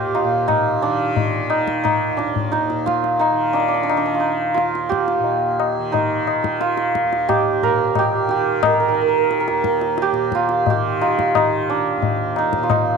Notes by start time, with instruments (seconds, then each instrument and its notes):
Already playing: tanpura D#2 A#2 D#3, santur F4 G4 A#4
0.15 santur F4, tabla na
0.24 tanpura A#2
0.48 santur D#4, tabla na, tabla ge
0.82 tanpura D#3, santur D4
1.16 tabla tin, tabla ge
1.46 tanpura D#3, santur D#4
1.50 tabla na
1.68 tabla ke
1.84 santur D#4, tabla na, tabla ge
2.08 tanpura D#2
2.17 santur D4, tabla te
2.36 tabla ge
2.52 santur D#4, tabla te
2.70 tanpura A#2, tabla te
2.86 santur F4, tabla ke
3.04 tabla te
3.20 santur D#4, tabla na
3.32 tanpura D#3
3.53 santur D4, tabla na
3.60 santur D4
3.68 santur D4
3.74 santur D4
3.83 santur D4
3.90 santur D4, tabla na
3.95 tanpura D#3, santur D4
4.06 santur D4
4.14 santur F4
4.20 santur D#4
4.54 tanpura D#2, santur F4, tabla te
4.75 tabla te
4.89 santur G4, tabla ke
5.08 tabla te
5.19 tanpura A#2
5.24 tabla tin
5.60 tabla na
5.79 tanpura D#3
5.92 santur D#4, tabla tin, tabla ge
6.27 tabla na
6.43 tanpura D#3, tabla ke
6.61 santur F4, tabla te
6.77 tabla te
6.95 tabla ke
7.04 tanpura D#2
7.13 tabla te
7.29 santur G4, tabla na, tabla ge
7.63 tanpura A#2, santur A#4, tabla ge
7.95 santur G4, tabla na, tabla ge
8.27 tanpura D#3, santur G4, tabla te
8.63 santur A#4, tabla na, tabla ge
8.73 santur A#4
8.80 santur A#4
8.88 tanpura D#3, santur A#4
8.94 santur A#4
9.01 santur A#4
9.09 santur A#4
9.18 santur A#4
9.24 santur A#4
9.31 santur A#4, tabla te
9.40 santur A#4
9.48 tanpura D#2, santur A#4, tabla te
9.64 tabla ke
9.81 tabla te
9.98 tabla te
10.02 santur G4
10.12 tanpura A#2, tabla te
10.32 santur F4, tabla ke
10.49 tabla te
10.66 santur G4, tabla tin, tabla ge
10.74 tanpura D#3
11.02 santur F4, tabla na
11.19 tabla ke
11.35 tanpura D#3, santur D#4, tabla na, tabla ge
11.70 santur D4
11.96 tanpura D#2
12.02 tabla tin, tabla ge
12.36 santur D#4, tabla na
12.53 tabla ke
12.58 tanpura A#2
12.63 santur F4
12.70 santur D#4, tabla na, tabla ge